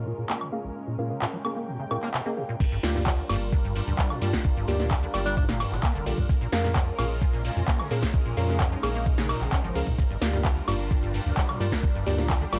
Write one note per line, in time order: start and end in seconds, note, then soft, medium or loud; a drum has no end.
0.00 2.56 G#3 medium
0.00 2.56 C#4 medium
0.00 0.74 F4 medium
0.00 2.56 A#4 medium
0.06 0.13 A#2 medium
0.18 0.24 A#2 medium
0.29 0.43 A#3 medium
0.29 clap loud
0.41 0.51 C#3 medium
0.41 high woodblock medium
0.52 0.59 A#3 medium
0.52 0.60 C#4 medium
0.52 0.60 G#4 medium
0.52 0.60 A#4 medium
0.52 0.60 F5 loud
0.64 0.70 A#1 medium
0.76 2.58 G5 medium
0.87 0.97 A#2 medium
0.99 1.12 A#2 medium
0.99 1.09 C#4 medium
0.99 1.09 G#4 medium
0.99 1.09 A#4 medium
0.99 1.09 F5 loud
1.10 1.20 C#3 medium
1.10 1.17 C#4 medium
1.10 1.17 G#4 medium
1.10 1.17 A#4 medium
1.10 1.17 F5 medium
1.22 1.26 A#2 loud
1.22 clap loud
1.33 1.37 F3 medium
1.45 1.51 A#3 medium
1.45 1.56 C#4 medium
1.45 1.56 G#4 medium
1.45 1.56 A#4 medium
1.45 1.56 F5 loud
1.45 high woodblock medium
1.56 1.69 A#3 medium
1.68 1.77 A#2 loud
1.79 1.86 C#3 medium
1.91 1.97 A#2 medium
1.91 2.23 C#4 medium
1.91 2.23 G#4 medium
1.91 2.23 A#4 medium
1.91 2.23 F5 loud
1.91 high woodblock medium
2.03 2.09 A#3 loud
2.03 clap soft
2.14 2.20 C3 medium
2.14 clap loud
2.26 2.39 A#3 medium
2.26 2.33 C#4 medium
2.26 2.33 G#4 medium
2.26 2.33 A#4 medium
2.26 2.33 D#5 medium
2.37 2.44 A#2 medium
2.37 2.44 C#4 medium
2.37 2.44 G#4 medium
2.37 2.44 A#4 medium
2.37 2.44 F5 medium
2.49 2.55 A#2 medium
2.60 2.68 G1 loud
2.60 2.64 G2 loud
2.60 6.26 G3 medium
2.60 6.26 D4 medium
2.60 6.26 F4 medium
2.60 12.59 A#4 medium
2.60 kick loud
2.60 crash loud
2.60 cabasa soft
2.72 2.79 G1 medium
2.72 2.78 G2 medium
2.72 cabasa soft
2.83 3.23 D2 loud
2.83 2.93 A#3 loud
2.83 2.93 F4 medium
2.83 2.93 G4 medium
2.83 2.93 D5 loud
2.83 snare medium
2.83 open hi-hat loud
2.83 ride medium
2.83 cabasa medium
2.95 3.01 G2 medium
2.95 3.02 A#3 medium
2.95 3.02 F4 medium
2.95 3.02 G4 medium
2.95 3.02 D5 medium
2.95 snare soft
2.95 cabasa soft
3.06 3.10 G3 medium
3.06 kick loud
3.06 clap loud
3.06 cabasa soft
3.18 cabasa soft
3.29 3.80 G1 loud
3.29 3.36 G2 loud
3.29 3.41 A#3 medium
3.29 3.41 F4 medium
3.29 3.41 G4 medium
3.29 3.41 D5 loud
3.29 open hi-hat loud
3.29 ride medium
3.29 cabasa medium
3.29 high woodblock medium
3.41 cabasa soft
3.52 3.56 D3 medium
3.52 kick loud
3.52 cabasa soft
3.64 3.74 G2 medium
3.64 cabasa soft
3.76 3.82 G2 medium
3.76 open hi-hat loud
3.76 ride medium
3.76 cabasa medium
3.87 3.94 D2 loud
3.87 3.94 G2 medium
3.87 cabasa soft
3.99 4.12 G3 medium
3.99 kick loud
3.99 clap loud
3.99 cabasa soft
4.10 4.20 A#2 medium
4.10 cabasa soft
4.10 high woodblock medium
4.22 4.36 G2 medium
4.22 4.28 G3 medium
4.22 4.29 A#3 medium
4.22 4.29 F4 medium
4.22 4.29 G4 medium
4.22 4.29 D5 loud
4.22 open hi-hat loud
4.22 ride medium
4.22 cabasa medium
4.33 4.40 G1 medium
4.33 kick medium
4.33 snare medium
4.33 cabasa soft
4.45 4.52 G1 loud
4.45 kick loud
4.45 cabasa soft
4.56 4.64 G1 medium
4.56 4.66 G2 medium
4.56 cabasa soft
4.68 5.07 D2 medium
4.68 4.81 G2 medium
4.68 4.78 A#3 loud
4.68 4.78 F4 medium
4.68 4.78 G4 medium
4.68 4.78 D5 loud
4.68 open hi-hat loud
4.68 ride medium
4.68 cabasa medium
4.79 4.89 A#2 medium
4.79 4.86 A#3 medium
4.79 4.86 F4 medium
4.79 4.86 G4 medium
4.79 4.86 D5 medium
4.79 snare soft
4.79 cabasa soft
4.91 4.95 G2 loud
4.91 kick loud
4.91 clap loud
4.91 cabasa soft
5.03 5.06 D3 medium
5.03 cabasa soft
5.14 5.65 G1 loud
5.14 5.20 G3 medium
5.14 5.25 A#3 loud
5.14 5.25 F4 medium
5.14 5.25 G4 medium
5.14 5.25 D5 loud
5.14 open hi-hat loud
5.14 ride medium
5.14 cabasa medium
5.14 high woodblock medium
5.26 5.39 G3 medium
5.26 5.33 D4 medium
5.26 cabasa soft
5.37 5.47 G2 loud
5.37 5.45 D4 medium
5.37 kick loud
5.37 cabasa soft
5.49 5.62 A#2 medium
5.49 snare medium
5.49 cabasa soft
5.60 5.74 G2 medium
5.60 open hi-hat loud
5.60 ride medium
5.60 cabasa medium
5.60 high woodblock medium
5.72 5.79 G1 loud
5.72 5.81 A#2 medium
5.72 clap soft
5.72 cabasa soft
5.83 5.93 A#3 medium
5.83 kick loud
5.83 clap loud
5.83 cabasa soft
5.95 6.02 F1 loud
5.95 6.20 D3 medium
5.95 cabasa soft
6.06 6.14 A#1 loud
6.06 6.13 A#3 medium
6.06 6.13 F4 medium
6.06 6.13 G4 medium
6.06 6.13 D5 loud
6.06 open hi-hat loud
6.06 ride medium
6.06 cabasa medium
6.18 6.25 G2 loud
6.18 6.22 G3 loud
6.18 kick medium
6.18 cabasa soft
6.29 6.37 A#1 loud
6.29 6.33 A#2 loud
6.29 9.95 G#3 medium
6.29 9.95 C#4 medium
6.29 8.12 F4 medium
6.29 kick loud
6.29 cabasa soft
6.41 6.48 A#1 medium
6.41 6.47 A#2 medium
6.41 cabasa soft
6.52 6.92 F2 medium
6.52 6.62 C#4 loud
6.52 6.62 G#4 medium
6.52 6.62 A#4 medium
6.52 6.62 F5 loud
6.52 snare medium
6.52 open hi-hat loud
6.52 ride medium
6.52 cabasa medium
6.64 6.70 A#2 medium
6.64 6.71 C#4 medium
6.64 6.71 G#4 medium
6.64 6.71 A#4 medium
6.64 6.71 F5 medium
6.64 snare soft
6.64 cabasa soft
6.76 6.79 A#3 medium
6.76 kick loud
6.76 clap loud
6.76 cabasa soft
6.87 cabasa soft
6.99 7.49 A#1 loud
6.99 7.05 A#2 loud
6.99 7.10 C#4 loud
6.99 7.10 G#4 medium
6.99 7.10 A#4 medium
6.99 7.10 F5 loud
6.99 open hi-hat loud
6.99 ride medium
6.99 cabasa medium
6.99 high woodblock medium
7.10 cabasa soft
7.22 7.26 F3 medium
7.22 kick loud
7.22 cabasa soft
7.33 7.43 A#2 medium
7.33 cabasa soft
7.45 7.51 A#2 medium
7.45 open hi-hat loud
7.45 ride medium
7.45 cabasa medium
7.56 7.64 F2 loud
7.56 7.63 A#2 medium
7.56 cabasa soft
7.68 7.81 A#3 medium
7.68 kick loud
7.68 clap loud
7.68 cabasa soft
7.80 7.89 C#3 medium
7.80 cabasa soft
7.80 high woodblock medium
7.91 8.05 A#2 medium
7.91 7.97 A#3 medium
7.91 7.98 C#4 medium
7.91 7.98 G#4 medium
7.91 7.98 A#4 medium
7.91 7.98 F5 loud
7.91 open hi-hat loud
7.91 ride medium
7.91 cabasa medium
8.03 8.09 A#1 medium
8.03 kick medium
8.03 snare medium
8.03 cabasa soft
8.14 8.21 A#1 loud
8.14 9.97 D#4 medium
8.14 kick loud
8.14 cabasa soft
8.26 8.33 A#1 medium
8.26 8.35 A#2 medium
8.26 cabasa soft
8.37 8.76 F2 loud
8.37 8.50 A#2 medium
8.37 8.47 C#4 loud
8.37 8.47 G#4 medium
8.37 8.47 A#4 medium
8.37 8.47 F5 loud
8.37 open hi-hat loud
8.37 ride medium
8.37 cabasa medium
8.49 8.58 C#3 medium
8.49 8.56 C#4 medium
8.49 8.56 G#4 medium
8.49 8.56 A#4 medium
8.49 8.56 F5 medium
8.49 snare soft
8.49 cabasa soft
8.60 8.64 A#2 loud
8.60 kick loud
8.60 clap loud
8.60 cabasa soft
8.72 8.76 F3 medium
8.72 cabasa soft
8.83 9.34 A#1 loud
8.83 8.90 A#3 medium
8.83 8.95 C#4 loud
8.83 8.95 G#4 medium
8.83 8.95 A#4 medium
8.83 8.95 F5 loud
8.83 open hi-hat loud
8.83 ride medium
8.83 cabasa medium
8.83 high woodblock medium
8.95 9.08 A#3 medium
8.95 cabasa soft
9.06 9.16 A#2 loud
9.06 kick loud
9.06 cabasa soft
9.18 9.31 C#3 medium
9.18 snare medium
9.18 cabasa soft
9.29 9.43 A#2 medium
9.29 open hi-hat loud
9.29 ride medium
9.29 cabasa medium
9.29 high woodblock medium
9.41 9.48 A#1 loud
9.41 9.50 C#3 medium
9.41 clap soft
9.41 cabasa soft
9.52 9.62 C#4 medium
9.52 kick loud
9.52 clap loud
9.52 cabasa soft
9.64 9.71 G#1 loud
9.64 9.89 F3 medium
9.64 cabasa soft
9.75 9.83 C#2 loud
9.75 9.83 C#4 loud
9.75 9.83 G#4 medium
9.75 9.83 A#4 medium
9.75 9.83 F5 loud
9.75 open hi-hat loud
9.75 ride medium
9.75 cabasa medium
9.87 9.94 A#2 loud
9.87 9.91 A#3 loud
9.87 kick medium
9.87 cabasa soft
9.98 10.06 G1 loud
9.98 10.02 G2 loud
9.98 12.59 G3 medium
9.98 12.59 D4 medium
9.98 11.81 F4 medium
9.98 kick loud
9.98 cabasa soft
10.10 10.17 G1 medium
10.10 10.17 G2 medium
10.10 cabasa soft
10.22 10.61 D2 loud
10.22 10.32 A#3 loud
10.22 10.32 F4 medium
10.22 10.32 G4 medium
10.22 10.32 D5 loud
10.22 snare medium
10.22 open hi-hat loud
10.22 ride medium
10.22 cabasa medium
10.33 10.40 G2 medium
10.33 10.40 A#3 medium
10.33 10.40 F4 medium
10.33 10.40 G4 medium
10.33 10.40 D5 medium
10.33 snare soft
10.33 cabasa soft
10.45 10.49 G3 medium
10.45 kick loud
10.45 clap loud
10.45 cabasa soft
10.56 cabasa soft
10.68 11.19 G1 loud
10.68 10.74 G2 loud
10.68 10.79 A#3 loud
10.68 10.79 F4 medium
10.68 10.79 G4 medium
10.68 10.79 D5 loud
10.68 open hi-hat loud
10.68 ride medium
10.68 cabasa medium
10.68 high woodblock medium
10.80 cabasa soft
10.91 10.95 D3 medium
10.91 kick loud
10.91 cabasa soft
11.03 11.12 G2 medium
11.03 cabasa soft
11.14 11.20 G2 medium
11.14 open hi-hat loud
11.14 ride medium
11.14 cabasa medium
11.26 11.33 D2 loud
11.26 11.32 G2 medium
11.26 cabasa soft
11.37 11.50 G3 medium
11.37 kick loud
11.37 clap loud
11.37 cabasa soft
11.49 11.58 A#2 medium
11.49 cabasa soft
11.49 high woodblock medium
11.60 11.75 G2 medium
11.60 11.67 G3 medium
11.60 11.67 A#3 medium
11.60 11.67 F4 medium
11.60 11.67 G4 medium
11.60 11.67 D5 loud
11.60 open hi-hat loud
11.60 ride medium
11.60 cabasa medium
11.72 11.78 G1 medium
11.72 kick medium
11.72 snare medium
11.72 cabasa soft
11.83 11.91 G1 loud
11.83 12.59 G4 medium
11.83 kick loud
11.83 cabasa soft
11.95 12.02 G1 medium
11.95 12.04 G2 medium
11.95 cabasa soft
12.06 12.46 D2 loud
12.06 12.20 G2 medium
12.06 12.16 A#3 loud
12.06 12.16 F4 medium
12.06 12.16 G4 medium
12.06 12.16 D5 loud
12.06 open hi-hat loud
12.06 ride medium
12.06 cabasa medium
12.18 12.27 A#2 medium
12.18 12.25 A#3 medium
12.18 12.25 F4 medium
12.18 12.25 G4 medium
12.18 12.25 D5 medium
12.18 snare soft
12.18 cabasa soft
12.29 12.33 G2 loud
12.29 kick loud
12.29 clap loud
12.29 cabasa soft
12.41 12.45 D3 medium
12.41 cabasa soft
12.53 12.59 G1 loud
12.53 12.59 G3 medium
12.53 12.59 A#3 medium
12.53 12.59 F4 medium
12.53 12.59 G4 medium
12.53 12.59 D5 loud
12.53 open hi-hat loud
12.53 ride medium
12.53 cabasa medium
12.53 high woodblock medium